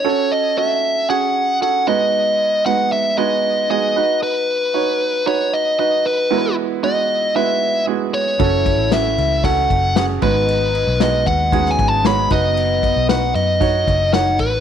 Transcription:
<<
  \new Staff \with { instrumentName = "Lead electric guitar" } { \time 4/4 \key b \mixolydian \tempo 4 = 115 cis''8 dis''8 e''4 fis''4 fis''8 dis''8~ | dis''4 fis''8 e''8 dis''4 dis''4 | b'2 cis''8 dis''8 dis''8 b'8~ | b'8 r8 dis''4 e''4 r8 cis''8~ |
cis''4 e''4 fis''4 fis''8 b'8~ | b'4 dis''8 fis''8~ \tuplet 3/2 { fis''8 gis''8 a''8 } b''8 dis''8~ | dis''4 fis''8 dis''4. fis''8 b'8 | }
  \new Staff \with { instrumentName = "Upright piano" } { \time 4/4 \key b \mixolydian <cis' fis' a'>4 <cis' fis' a'>4 <cis' fis' gis'>4 <cis' fis' a'>8 <gis b dis' fis' b'>8~ | <gis b dis' fis' b'>4 <gis b dis' fis' b'>4 <gis b dis' fis' b'>4 <gis b dis' fis' gis'>8 <dis' fis' b'>8~ | <dis' fis' b'>4 <dis' fis' cis''>4 <dis' fis' b'>4 <dis' fis' b'>4 | <gis b e' fis' ais' b'>4 <gis b e' fis' b'>4 <gis b e' fis' b'>4 <gis b e' fis' gis'>4 |
<cis' fis' a'>4 <cis' fis' a'>4 <cis' fis' a'>4 <cis' fis' gis'>8 <gis b dis' fis' b'>8~ | <gis b dis' fis' b'>4 <gis b dis' fis' b'>4 <gis b dis' fis' gis'>4 <gis b dis' fis' cis''>8 <dis' fis' b'>8~ | <dis' fis' b'>4 <dis' fis' b'>4 <dis' fis' cis''>4 <dis' fis' cis''>4 | }
  \new Staff \with { instrumentName = "Upright piano" } { \clef bass \time 4/4 \key b \mixolydian r2. r8 gis,8~ | gis,4 r2. | r1 | e4. r2 r8 |
r2. r8 gis,8~ | gis,4 r2. | r1 | }
  \new Staff \with { instrumentName = "French horn section" } { \clef bass \time 4/4 \key b \mixolydian r1 | r1 | r1 | r1 |
<e e'>2. r8 <dis dis'>8~ | <dis dis'>4. r8 <cis cis'>4 r8 <b, b>8~ | <b, b>2~ <b, b>8 r8 <dis dis'>8 r8 | }
  \new Staff \with { instrumentName = "Fingered electric bass" } { \clef bass \time 4/4 \key b \mixolydian r1 | r1 | r1 | r1 |
fis,,8. a,,8. cis,4 fis,,4 gis,,8~ | gis,,8. b,,8. dis,4 gis,,4 fis,,8~ | fis,,8. b,,8. fis,4 fis,,4 a,,8 | }
  \new DrumStaff \with { instrumentName = "Drums" } \drummode { \time 4/4 r4 r4 r4 r4 | r4 r4 r4 r4 | r4 r4 r4 r4 | r4 r4 r4 r4 |
<bd cymr>8 <bd cymr>8 <cymr sn>8 cymr8 <bd cymr>8 <bd cymr>8 <cymr sn>8 <bd cymr>8 | cymr8 cymr8 <cymr sn>8 <bd cymr>8 <bd cymr>16 sn16 <bd cymr>8 <cymr sn>8 <bd cymr>8 | cymr8 <bd cymr>8 <cymr sn>8 cymr8 <bd cymr>8 <bd cymr>8 <cymr sn>8 <bd cymr>8 | }
>>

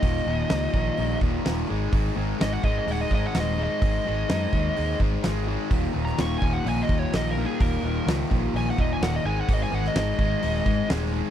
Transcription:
<<
  \new Staff \with { instrumentName = "Lead electric guitar" } { \time 4/4 \key aes \mixolydian \tempo 4 = 127 ees''2~ ees''8 r4. | r4 ees''16 ges''16 ees''16 ees''16 ges''16 ees''16 ees''16 ges''16 ees''8 ees''8~ | ees''2~ ees''8 r4. | \tuplet 3/2 { r4 bes''8 des'''8 aes''8 ges''8 aes''8 ees''8 des''8 ees''8 bes'8 aes'8 } |
bes'4 r4 aes''16 ges''16 ees''16 aes''16 ges''16 ees''16 aes''16 ges''16 | ees''16 aes''16 ges''16 ees''16 ees''2 r4 | }
  \new Staff \with { instrumentName = "Distorted electric guitar" } { \clef bass \time 4/4 \key aes \mixolydian <ees, bes, ees>8 <ees, bes, ees>8 <ees, bes, ees>8 <ees, bes, ees>8 <ees, bes, ees>8 <ees, bes, ees>8 <ees, bes, ees>8 <aes, ees aes>8 | <aes, ees aes>8 <aes, ees aes>8 <aes, ees aes>8 <aes, ees aes>8 <aes, ees aes>8 <aes, ees aes>8 <aes, ees aes>8 <aes, ees aes>8 | <aes, ees aes>8 <aes, ees aes>8 <aes, ees aes>8 <aes, ees aes>8 <aes, ees aes>8 <aes, ees aes>8 <aes, ees aes>8 <aes, ees aes>8 | <ees, bes, ees>8 <ees, bes, ees>8 <ees, bes, ees>8 <ees, bes, ees>8 <ees, bes, ees>8 <ees, bes, ees>8 <ees, bes, ees>8 <ees, bes, ees>8 |
<ees, bes, ees>8 <ees, bes, ees>8 <ees, bes, ees>8 <ees, bes, ees>8 <ees, bes, ees>8 <ees, bes, ees>8 <ees, bes, ees>8 <aes, ees aes>8 | <aes, ees aes>8 <aes, ees aes>8 <aes, ees aes>8 <aes, ees aes>8 <aes, ees aes>8 <aes, ees aes>8 <aes, ees aes>8 <aes, ees aes>8 | }
  \new Staff \with { instrumentName = "Overdriven electric guitar" } { \clef bass \time 4/4 \key aes \mixolydian <ees, bes, ees>8 <ees, bes, ees>8 <ees, bes, ees>8 <ees, bes, ees>8 <ees, bes, ees>8 <ees, bes, ees>8 <ees, bes, ees>8 <aes, ees aes>8 | <aes, ees aes>8 <aes, ees aes>8 <aes, ees aes>8 <aes, ees aes>8 <aes, ees aes>8 <aes, ees aes>8 <aes, ees aes>8 <aes, ees aes>8 | <aes, ees aes>8 <aes, ees aes>8 <aes, ees aes>8 <aes, ees aes>8 <aes, ees aes>8 <aes, ees aes>8 <aes, ees aes>8 <aes, ees aes>8 | <ees, bes, ees>8 <ees, bes, ees>8 <ees, bes, ees>8 <ees, bes, ees>8 <ees, bes, ees>8 <ees, bes, ees>8 <ees, bes, ees>8 <ees, bes, ees>8 |
<ees, bes, ees>8 <ees, bes, ees>8 <ees, bes, ees>8 <ees, bes, ees>8 <ees, bes, ees>8 <ees, bes, ees>8 <ees, bes, ees>8 <aes, ees aes>8 | <aes, ees aes>8 <aes, ees aes>8 <aes, ees aes>8 <aes, ees aes>8 <aes, ees aes>8 <aes, ees aes>8 <aes, ees aes>8 <aes, ees aes>8 | }
  \new Staff \with { instrumentName = "Fingered electric bass" } { \clef bass \time 4/4 \key aes \mixolydian ees,,8 ees,,8 des,8 bes,,8 bes,,8 ees,,8 ees,,8 aes,,8 | aes,,8 aes,,8 aes,,8 aes,,8 ees,,8 aes,8 ees,,4 | aes,,8 aes,,8 ges,8 ees,8 ees,8 aes,,8 aes,,4 | ees,,8 ees,,8 ees,,8 ees,,8 bes,,8 ees,8 bes,,4 |
ees,,8 ees,,8 des,8 bes,,8 bes,,8 ees,,8 ees,,8 aes,,8 | aes,,8 aes,,8 aes,,8 aes,,8 ees,,8 aes,8 ees,,4 | }
  \new DrumStaff \with { instrumentName = "Drums" } \drummode { \time 4/4 <hho bd>4 <hho sn>8 bd8 hho8 bd8 <hho sn>4 | <hho bd>4 <hho sn>8 bd8 hho8 bd8 <hho sn>4 | <hho bd>4 <hho sn>8 bd8 hho8 bd8 <hho sn>4 | <hho bd>8. sn16 <hho sn>8 bd8 hho8 bd8 <hho sn>4 |
<hho bd>4 <hho sn>8 bd8 hho8 bd8 <hho sn>4 | <hho bd>8. sn16 <hho sn>8 bd8 hho8 bd8 <hho sn>4 | }
>>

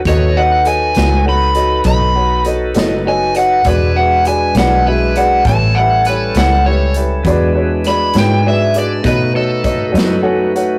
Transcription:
<<
  \new Staff \with { instrumentName = "Electric slide guitar" } { \time 12/8 \key b \dorian \tempo 4. = 67 cis''8 fis''8 gis''4 b''4 b''4 r4 gis''8 fis''8 | b'8 fis''8 gis''8 fis''8 b'8 fis''8 a''8 fis''8 b'8 fis''8 cis''8 r8 | r4 b''8 g''8 e''8 d''8 b'8 a'2 r8 | }
  \new Staff \with { instrumentName = "Upright piano" } { \time 12/8 \key b \dorian <fis' a' cis'' dis''>8 <fis' a' cis'' dis''>8 <fis' a' cis'' dis''>8 <fis' a' cis'' fis''>8 <fis' a' cis'' fis''>8 <fis' a' cis'' dis''>8 <fis' a' cis'' dis''>8 <fis' a' cis'' fis''>8 <fis' a' cis'' dis''>8 <fis' a' cis'' dis''>8 <fis' a' cis'' dis''>8 <fis' a' cis'' dis''>8 | <fis' gis' b' d''>8 <fis' gis' b' e''>8 <fis' gis' b' d''>8 <fis' gis' b' d''>8 <fis' gis' b' e''>8 <fis' gis' b' d''>8 <e' g' b' cis''>8 <e' g' b' e''>8 <e' g' b' cis''>8 <e' g' b' cis''>8 <e' g' b' cis''>8 <e' g' b' cis''>8 | <fis' gis' b' d''>8 <fis' gis' b' cis''>8 <fis' gis' b' d''>8 <fis' gis' b' cis''>8 <fis' gis' b' d''>8 <fis' gis' b' d''>8 <fis' a' cis'' dis''>8 <fis' a' cis'' dis''>8 <fis' a' cis'' dis''>8 <fis' a' cis'' dis''>8 <fis' a' cis'' fis'' gis''>8 <fis' a' cis'' fis''>8 | }
  \new Staff \with { instrumentName = "Tonewheel organ" } { \time 12/8 \key b \dorian <dis' fis' a' b'>1. | <gis d' e' b'>2. <g cis' e' a'>2. | <gis d' e' b'>2. <a dis' fis' b'>2. | }
  \new Staff \with { instrumentName = "Fingered electric bass" } { \clef bass \time 12/8 \key b \dorian dis,4. cis,4. b,,4. fis,,4. | e,,4. b,,4. a,,4. cis,4. | e,4. gis,4. b,4. fis,4. | }
  \new DrumStaff \with { instrumentName = "Drums" } \drummode { \time 12/8 <hh bd>4 hh8 <hh sn>4 hh8 <hh bd>4 hh8 <hh sn>4 hh8 | <hh bd>4 hh8 <hh sn>4 hh8 <hh bd>4 hh8 <hh sn>4 hh8 | <hh bd>4 <hh sn>8 <hh sn>4 hh8 <hh bd>4 <hh bd>8 <hh sn>4 hh8 | }
>>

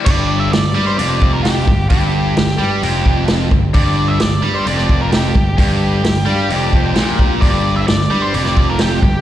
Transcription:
<<
  \new Staff \with { instrumentName = "Lead electric guitar" } { \time 4/4 \key g \minor \tempo 4 = 130 d''8. e''16 d''8. c''16 d''8. bes'16 g'4 | g'2. r4 | d''8. e''16 d''8. c''16 d''8. bes'16 g'4 | g'2. r4 |
d''8. e''16 d''8. c''16 d''8. bes'16 g'4 | }
  \new Staff \with { instrumentName = "Overdriven electric guitar" } { \time 4/4 \key g \minor r1 | r1 | r1 | r4. f''8 d''8 c''8 g'8. r16 |
r1 | }
  \new Staff \with { instrumentName = "Distorted electric guitar" } { \clef bass \time 4/4 \key g \minor g,4 g,8 g8 f,4. g,8 | g,4 g,8 g8 f,4. g,8 | g,4 g,8 g8 f,4. g,8 | g,4 g,8 g8 f,4 bes,4 |
g,4 g,8 g8 f,4. g,8 | }
  \new Staff \with { instrumentName = "Overdriven electric guitar" } { \clef bass \time 4/4 \key g \minor g,4 g,8 g8 f,4. g,8 | g,4 g,8 g8 f,4. g,8 | g,4 g,8 g8 f,4. g,8 | g,4 g,8 g8 f,4 bes,4 |
g,4 g,8 g8 f,4. g,8 | }
  \new Staff \with { instrumentName = "Picked electric bass" } { \clef bass \time 4/4 \key g \minor g,,4 g,,8 g,8 f,,4. g,,8 | g,,4 g,,8 g,8 f,,4. g,,8 | g,,4 g,,8 g,8 f,,4. g,,8 | g,,4 g,,8 g,8 f,,4 bes,,4 |
g,,4 g,,8 g,8 f,,4. g,,8 | }
  \new DrumStaff \with { instrumentName = "Drums" } \drummode { \time 4/4 <cymc bd>4 <hho sn>4 hho8 bd8 <hho sn>8 bd8 | <hho bd>4 <hho sn>16 sn8. hho8 bd8 <hho sn>8 bd8 | <hho bd>4 <hho sn>4 hho16 sn16 bd8 <hho sn>8 bd8 | <hho bd>4 <hho sn>4 hho8 bd8 <hho sn>8 bd8 |
<hho bd>4 <hho sn>16 sn8. hho16 sn16 bd8 <hho sn>8 bd8 | }
>>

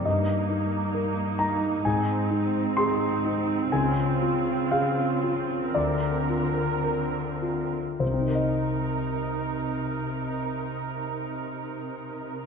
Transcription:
<<
  \new Staff \with { instrumentName = "Grand piano" } { \time 4/4 \key c \minor \tempo 4 = 57 << { ees''4. bes''8 aes''4 c'''4 | aes''4 f''4 d''4 r4 | <c, c c' ees' bes' c'' ees''>1 | } \\ { g,8 ees'8 bes'8 ees'8 aes,8 ees'8 aes'8 ees'8 | des,8 f'8 aes'8 f'8 d,8 f'8 bes'8 f'8 | r1 | } >> }
  \new Staff \with { instrumentName = "Viola section" } { \time 4/4 \key c \minor << { ees'1 | f'2 bes'2 | bes'1 | } \\ { bes2 c'2~ | c'1 | ees'1 | } >> }
  \new Staff \with { instrumentName = "Cello section" } { \clef bass \time 4/4 \key c \minor g,2 aes,2 | des2 d2 | c1 | }
>>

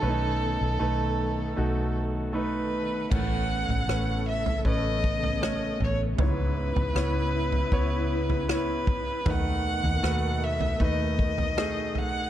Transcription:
<<
  \new Staff \with { instrumentName = "Violin" } { \time 4/4 \key a \lydian \tempo 4 = 78 a'2~ a'8 r8 b'4 | fis''4. e''8 dis''4. cis''8 | b'2. b'4 | fis''4. e''8 dis''4. fis''8 | }
  \new Staff \with { instrumentName = "Grand piano" } { \time 4/4 \key a \lydian <a cis' dis' b'>4 <a dis' b'>4 <a dis' fis'>4 <a dis' b'>4 | <a cis' ais' b'>4 <a cis' b'>4 <a cis' b'>4 <a cis' cis''>4 | <b e' cis''>4 <b e' cis''>4 <b e' cis''>4 <b e' cis''>4 | <a dis' b'>4 <a fis' b'>4 <a dis' b'>4 <a dis' gis'>4 | }
  \new Staff \with { instrumentName = "Grand piano" } { \clef bass \time 4/4 \key a \lydian r1 | <a, e>4. r2 r8 | gis,4. r2 r8 | dis4. r2 r8 | }
  \new Staff \with { instrumentName = "String section" } { \time 4/4 \key a \lydian << { a'1 | a'1 | e'1 | dis1 | } \\ { <dis b>1 | <cis b>1~ | <cis b>1 | <b, a>1 | } >> }
  \new Staff \with { instrumentName = "Fingered electric bass" } { \clef bass \time 4/4 \key a \lydian b,,8. b,,16 b,,4 b,,2 | a,,8. a,,16 a,,4 a,,4. a,,8 | cis,8. cis,16 cis,4 cis,2 | dis,8. dis,16 dis,4 dis,2 | }
  \new DrumStaff \with { instrumentName = "Drums" } \drummode { \time 4/4 r4 r4 r4 r4 | <cymc bd tomfh>8. tomfh16 ss8. tomfh16 bd8 bd16 tomfh16 ss8 tomfh8 | tomfh8. tomfh16 ss8. tomfh16 bd8. tomfh16 ss8 <bd tomfh>8 | <bd tomfh>8. tomfh16 ss8. tomfh16 bd8 bd16 tomfh16 ss8 tomfh8 | }
>>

